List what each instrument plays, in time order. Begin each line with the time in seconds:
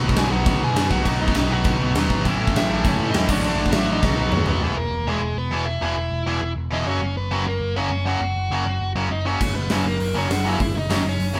Already playing: distorted electric guitar B2 D#3 F#3 B3 D#4
0.00 picked electric bass B1
0.09 kick
0.16 picked electric bass B1, overdriven electric guitar G#4 G#5, snare, crash
0.30 picked electric bass B1, distorted electric guitar B2 F#3 B3, overdriven electric guitar F#4 F#5
0.46 picked electric bass B1, kick, crash
0.60 picked electric bass B2, overdriven electric guitar G#4 G#5
0.75 picked electric bass F#2, distorted electric guitar B2 F#3 B3, snare, crash
0.90 picked electric bass B1, overdriven electric guitar F#4 F#5, kick
1.04 picked electric bass B1, distorted electric guitar B2 D#3 F#3 B3, kick, crash
1.08 distorted electric guitar B3 D#4
1.20 picked electric bass B1, overdriven electric guitar D#4 D#5
1.28 kick
1.34 picked electric bass B1, overdriven electric guitar D#4 D#5, snare, crash
1.49 picked electric bass B1, distorted electric guitar B2 F#3 B3, overdriven electric guitar F#4 F#5
1.64 picked electric bass B1, kick, crash
1.80 picked electric bass B1
1.95 picked electric bass D#2, distorted electric guitar B2 F#3, snare, crash
1.99 distorted electric guitar B3
2.10 picked electric bass G#1, kick
2.25 picked electric bass A1, distorted electric guitar A2 E3 A3 C#4 E4, kick, crash
2.29 distorted electric guitar A3
2.40 picked electric bass A1
2.47 kick
2.55 picked electric bass A1, overdriven electric guitar E4 E5, snare, crash
2.69 picked electric bass A1, distorted electric guitar A2 E3 A3
2.84 picked electric bass A1, overdriven electric guitar C#4 C#5, kick, crash
2.99 picked electric bass A2
3.08 overdriven electric guitar D#4 D#5
3.13 picked electric bass E2, distorted electric guitar A2 E3 A3, snare, crash
3.29 picked electric bass A1, distorted electric guitar A2 D3 A3 D4 F#4, overdriven electric guitar C#4 C#5, kick, crash
3.33 distorted electric guitar D4
3.42 picked electric bass A1, overdriven electric guitar D4, crash
3.48 overdriven electric guitar D5
3.56 picked electric bass A1
3.66 overdriven electric guitar E4, kick
3.72 picked electric bass A1, distorted electric guitar D3, overdriven electric guitar E5, snare, crash
3.76 distorted electric guitar A3 D4
3.86 picked electric bass A1, overdriven electric guitar D#4
3.92 overdriven electric guitar D#5
4.02 picked electric bass B1, distorted electric guitar B2 D#3 F#3 B3 F#4, kick, snare
4.17 picked electric bass B1
4.31 picked electric bass D#2, overdriven electric guitar C#4 C#5, mid tom
4.45 picked electric bass D#2, distorted electric guitar F#3 B3, overdriven electric guitar B4, floor tom
4.50 distorted electric guitar B2, overdriven electric guitar B3
4.61 picked electric bass E1, distorted electric guitar E2 B2 E3 B3 E4 G#4
4.75 picked electric bass E1, overdriven electric guitar A#3 A#4
4.90 picked electric bass E1
5.06 picked electric bass E1, distorted electric guitar E2 B2 E3 B3 E4 G#4, overdriven electric guitar G#4
5.10 overdriven electric guitar G#3
5.21 picked electric bass E1
5.36 picked electric bass E1, overdriven electric guitar B3 B4
5.51 picked electric bass E1, distorted electric guitar E2 B2 E3 B3 E4 G#4
5.66 overdriven electric guitar E4 E5
5.81 picked electric bass E1, distorted electric guitar E2 B2 E3 B3 E4 G#4
5.96 picked electric bass E1
6.12 picked electric bass E1
6.26 picked electric bass E1, distorted electric guitar E2 B2 E3 B3 E4 G#4
6.42 picked electric bass E1
6.56 picked electric bass E1
6.71 picked electric bass E1, distorted electric guitar E2 B2 E3 B3 E4 G#4, overdriven electric guitar D#4 D#5
6.86 picked electric bass F#1, distorted electric guitar F#2 C#3 F#3 A#3 C#4 F#4, overdriven electric guitar C#4 C#5
7.02 picked electric bass F#1
7.17 picked electric bass F#1, overdriven electric guitar B3 B4
7.31 picked electric bass F#1, distorted electric guitar F#2 C#3 F#3 A#3 C#4 F#4
7.47 picked electric bass F#1, overdriven electric guitar A#3 A#4
7.61 picked electric bass F#1
7.76 picked electric bass F#1, distorted electric guitar F#2 C#3 F#3 A#3 C#4 F#4, overdriven electric guitar C#4 C#5
7.90 picked electric bass F#1
8.05 distorted electric guitar F#2 C#3 F#3 A#3 C#4 F#4, overdriven electric guitar F#4 F#5
8.21 picked electric bass F#1
8.36 picked electric bass F#1
8.50 picked electric bass F#1, distorted electric guitar F#2 C#3 F#3 A#3 C#4 F#4
8.66 picked electric bass F#1
8.81 picked electric bass F#1
8.95 picked electric bass F#1, distorted electric guitar F#2 C#3 F#3 A#3 C#4 F#4
9.10 picked electric bass F#1, overdriven electric guitar D#4 D#5
9.25 distorted electric guitar F#2 C#3 F#3 A#3 C#4 F#4, overdriven electric guitar C#4 C#5
9.41 picked electric bass F#1, kick, crash
9.55 picked electric bass F#1, overdriven electric guitar B3 B4
9.69 picked electric bass F#1, distorted electric guitar F#2 C#3 F#3 A#3 C#4 F#4, snare, open hi-hat
9.85 picked electric bass F#1, overdriven electric guitar A#3 A#4
10.00 picked electric bass F#1, open hi-hat
10.14 picked electric bass F#1, distorted electric guitar F#2 C#3 F#3 A#3 C#4 F#4, overdriven electric guitar C#4 C#5
10.30 picked electric bass F#1, overdriven electric guitar F#4 F#5, snare, open hi-hat
10.44 distorted electric guitar F#2 C#3 F#3 A#3 C#4 F#4, overdriven electric guitar E4
10.49 overdriven electric guitar E5
10.60 picked electric bass F#1, kick, open hi-hat
10.74 picked electric bass F#1, overdriven electric guitar D#4
10.79 overdriven electric guitar D#5
10.89 picked electric bass F#1, distorted electric guitar F#2 C#3 F#3 A#3 C#4 F#4, snare, open hi-hat
11.05 picked electric bass F#1, overdriven electric guitar C#4
11.09 overdriven electric guitar C#5
11.19 picked electric bass F#1, open hi-hat
11.33 picked electric bass F#1, distorted electric guitar F#2 C#3 F#3 A#3